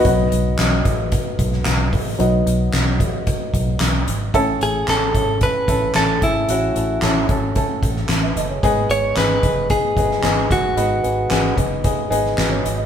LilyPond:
<<
  \new Staff \with { instrumentName = "Clean electric guitar" } { \time 4/4 \key b \mixolydian \tempo 4 = 112 r1 | r1 | r8 gis'8 a'4 b'4 a'8 e'8~ | e'4. r2 r8 |
r8 cis''8 b'4 gis'4. fis'8~ | fis'4. r2 r8 | }
  \new Staff \with { instrumentName = "Grand piano" } { \time 4/4 \key b \mixolydian << { r1 | r1 | r1 | r2. r16 <b' e''>16 <a' dis''>16 <gis' cis''>16~ |
<gis' cis''>16 r2. r8. | r2. <fis' b'>16 <gis' cis''>16 <gis' dis''>16 <gis' dis''>16 | } \\ { r1 | r1 | <cis' e' a'>8 <cis' e' a'>8 <cis' e' gis'>8 <cis' e' a'>8 <cis' e' a'>8 <cis' e' a'>8 <cis' e' a'>8 <cis' e' gis'>8 | <cis' e' fis'>8 <cis' e' a'>8 <cis' e' a'>8 <cis' e' a'>8 <cis' e' a'>8 r4. |
<b dis' gis'>8 <b dis' gis'>8 <b dis' gis'>8 <b dis' gis'>8 <b dis' gis'>8 <b dis' gis'>8 <b dis' gis'>8 <b dis' gis'>8 | <b dis' b'>8 <b dis' gis'>8 <b dis' gis'>8 <b dis' gis'>8 <b dis' gis'>8 <b dis' gis'>8 r4 | } >> }
  \new Staff \with { instrumentName = "Grand piano" } { \clef bass \time 4/4 \key b \mixolydian <fis b dis'>1 | <fis b dis'>4. r2 r8 | a,4. r2 r8 | a,4. r2 r8 |
gis,4. r2 r8 | gis,4. r2 r8 | }
  \new Staff \with { instrumentName = "Fingered electric bass" } { \clef bass \time 4/4 \key b \mixolydian b,,8 b,,8 b,,8 a,,8. r16 b,,8 b,,8 a,,8 | b,,8 b,,8 b,,8 a,,8. r16 b,,8 b,,8 gis,,8 | a,,8 a,,8 a,,8 gis,,8. r16 a,,8 a,,8 gis,,8 | a,,8 a,,8 a,,8 gis,,8. r16 a,,8 a,,8 fis,,8 |
gis,,8 gis,,8 gis,,8 fis,,8. r16 gis,,8 gis,,8 fis,,8 | gis,,8 gis,,8 gis,,8 fis,,8. r16 gis,,8 gis,,8 gis,,8 | }
  \new DrumStaff \with { instrumentName = "Drums" } \drummode { \time 4/4 <hh bd>8 hh8 <hc hh sn>8 <hh bd>8 <hh bd>8 <hh bd>16 sn16 <hc hh sn>8 <hho bd>8 | hh8 hh8 <hc hh sn>8 <hh bd>8 <hh bd>8 <hh bd>8 <hc hh sn>8 hh8 | <hh bd>8 hh8 <hc hh sn>8 <hh bd>8 <hh bd>8 <hh bd>8 <hc hh sn>8 <hh bd>8 | hh8 hh8 <hc hh sn>8 <hh bd>8 <hh bd>8 <hh bd>16 sn16 <hc hh sn>8 hh8 |
<hh bd>8 hh8 <hc hh sn>8 <hh bd>8 <hh bd>8 <hh bd>16 sn16 <hc hh sn>8 <hh bd>8 | hh8 hh8 <hc hh sn>8 <hh bd>8 <hh bd>8 hh16 sn16 <hc hh sn>8 hh8 | }
>>